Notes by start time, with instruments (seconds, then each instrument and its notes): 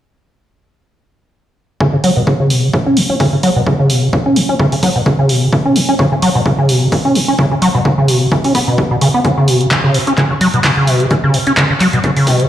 1.80 acid bass C#3, kick
1.93 acid bass C#3
2.04 acid bass F#3, open hi-hat
2.17 acid bass B2
2.27 acid bass C#3, kick
2.40 acid bass C#3
2.50 acid bass B2, open hi-hat
2.63 acid bass C#3
2.73 acid bass C#3, kick
2.86 acid bass C#4
2.97 acid bass B2, open hi-hat
3.10 acid bass C#4
3.20 acid bass C#3, kick, open hi-hat
3.33 acid bass C#3
3.43 acid bass F#3, open hi-hat
3.56 acid bass B2
3.66 acid bass C#3, kick
3.79 acid bass C#3
3.90 acid bass B2, open hi-hat
4.03 acid bass C#3
4.13 acid bass C#3, kick
4.26 acid bass C#4
4.36 acid bass B2, open hi-hat
4.49 acid bass C#4
4.59 acid bass C#3, kick
4.72 acid bass C#3, open hi-hat
4.83 acid bass F#3, kick, open hi-hat
4.96 acid bass B2
5.06 acid bass C#3, kick
5.19 acid bass C#3
5.29 acid bass B2, open hi-hat
5.42 acid bass C#3
5.53 acid bass C#3, kick
5.65 acid bass C#4
5.76 acid bass B2, open hi-hat
5.89 acid bass C#4
5.99 acid bass C#3, kick
6.12 acid bass C#3
6.22 acid bass F#3, open hi-hat
6.35 acid bass B2
6.46 acid bass C#3, kick
6.58 acid bass C#3
6.69 acid bass B2, open hi-hat
6.82 acid bass C#3
6.92 acid bass C#3, kick, open hi-hat
7.05 acid bass C#4
7.15 acid bass B2, open hi-hat
7.28 acid bass C#4
7.39 acid bass C#3, kick
7.51 acid bass C#3
7.62 acid bass F#3, open hi-hat
7.75 acid bass B2
7.85 acid bass C#3, kick
7.98 acid bass C#3
8.08 acid bass B2, open hi-hat
8.21 acid bass C#3
8.32 acid bass C#3, kick
8.44 acid bass C#4, open hi-hat
8.55 acid bass B3, kick, open hi-hat
8.68 acid bass B2
8.78 acid bass C#3, kick
8.91 acid bass B2
9.01 acid bass C#3, open hi-hat
9.14 acid bass B3
9.25 acid bass C#3, kick, closed hi-hat
9.37 acid bass C#3
9.48 acid bass B2, open hi-hat
9.61 acid bass C#3, closed hi-hat
9.71 acid bass C#3, kick, clap, closed hi-hat
9.84 acid bass C#3
9.94 acid bass B2, open hi-hat
10.07 acid bass C#4, closed hi-hat
10.18 acid bass C#3, kick, clap, closed hi-hat
10.31 acid bass C#3
10.41 acid bass F#3, open hi-hat
10.54 acid bass B2, closed hi-hat
10.64 acid bass C#3, kick, clap, open hi-hat
10.77 acid bass C#3
10.87 acid bass B2, open hi-hat
11.00 acid bass C#3, closed hi-hat
11.11 acid bass C#3, kick, closed hi-hat
11.24 acid bass C#3
11.34 acid bass B2, open hi-hat
11.47 acid bass C#4, closed hi-hat
11.57 acid bass C#3, kick, clap, closed hi-hat
11.70 acid bass C#3
11.80 acid bass F#3, clap, open hi-hat
11.93 acid bass B2, closed hi-hat
12.04 acid bass C#3, kick, closed hi-hat
12.17 acid bass C#3, open hi-hat
12.27 acid bass B2, kick, open hi-hat
12.40 acid bass C#3, closed hi-hat